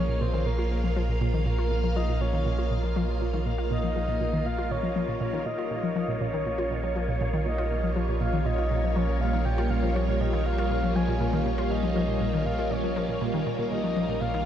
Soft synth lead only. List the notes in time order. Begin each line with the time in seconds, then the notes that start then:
Already playing: C#5
0.21 C5
0.46 A#4
1.46 A#4
1.96 D#5
2.21 C#5
3.71 D#5
4.46 F5
4.71 C#5
5.21 C#5
5.46 D#5
6.21 C#5
7.46 D#5
8.21 F5
8.46 D#5
8.96 C#5
9.21 F5
9.45 G5
9.70 F5
9.95 C#5
10.20 D#5
10.46 F5
10.96 G#5
11.64 F5
11.71 D#5
12.46 F5
12.70 C#5
13.71 D#5
14.21 F5